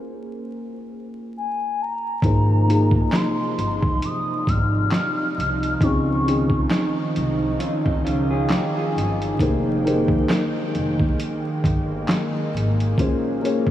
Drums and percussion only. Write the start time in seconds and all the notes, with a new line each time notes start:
2.22 kick, closed hi-hat
2.70 closed hi-hat
2.91 kick
3.12 snare, clap, closed hi-hat
3.59 closed hi-hat
3.83 kick
4.02 closed hi-hat
4.47 kick, closed hi-hat
4.91 snare, clap, closed hi-hat
5.40 closed hi-hat
5.63 closed hi-hat
5.81 kick, closed hi-hat
6.28 closed hi-hat
6.50 kick
6.70 snare, clap, closed hi-hat
7.16 closed hi-hat
7.60 closed hi-hat
7.86 kick
8.07 closed hi-hat
8.49 snare, clap, closed hi-hat
8.98 closed hi-hat
9.22 closed hi-hat
9.39 kick, closed hi-hat
9.87 closed hi-hat
10.08 kick
10.29 snare, clap, closed hi-hat
10.75 closed hi-hat
11.00 kick
11.20 closed hi-hat
11.64 kick, closed hi-hat
12.08 snare, clap, closed hi-hat
12.57 closed hi-hat
12.80 closed hi-hat
12.98 kick, closed hi-hat
13.45 closed hi-hat
13.67 kick